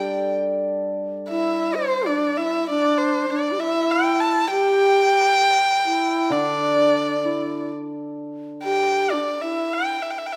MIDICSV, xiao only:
0, 0, Header, 1, 2, 480
1, 0, Start_track
1, 0, Tempo, 928793
1, 428, Time_signature, 2, 2, 24, 8
1, 1386, Tempo, 909091
1, 3306, Tempo, 923077
1, 5410, End_track
2, 0, Start_track
2, 0, Title_t, "Xiao"
2, 0, Program_c, 0, 77
2, 0, Note_on_c, 0, 67, 81
2, 191, Note_off_c, 0, 67, 0
2, 673, Note_on_c, 0, 64, 69
2, 906, Note_on_c, 0, 72, 78
2, 914, Note_off_c, 0, 64, 0
2, 1073, Note_on_c, 0, 62, 69
2, 1081, Note_off_c, 0, 72, 0
2, 1232, Note_on_c, 0, 64, 72
2, 1240, Note_off_c, 0, 62, 0
2, 1388, Note_off_c, 0, 64, 0
2, 1391, Note_on_c, 0, 62, 84
2, 1689, Note_off_c, 0, 62, 0
2, 1712, Note_on_c, 0, 62, 71
2, 1828, Note_on_c, 0, 67, 49
2, 1836, Note_off_c, 0, 62, 0
2, 1868, Note_on_c, 0, 64, 76
2, 1876, Note_off_c, 0, 67, 0
2, 2342, Note_off_c, 0, 64, 0
2, 2345, Note_on_c, 0, 67, 93
2, 2904, Note_off_c, 0, 67, 0
2, 3061, Note_on_c, 0, 64, 67
2, 3309, Note_on_c, 0, 62, 73
2, 3317, Note_off_c, 0, 64, 0
2, 3790, Note_on_c, 0, 64, 56
2, 3798, Note_off_c, 0, 62, 0
2, 4032, Note_off_c, 0, 64, 0
2, 4518, Note_on_c, 0, 67, 78
2, 4769, Note_on_c, 0, 62, 66
2, 4777, Note_off_c, 0, 67, 0
2, 4917, Note_off_c, 0, 62, 0
2, 4920, Note_on_c, 0, 64, 59
2, 5213, Note_off_c, 0, 64, 0
2, 5410, End_track
0, 0, End_of_file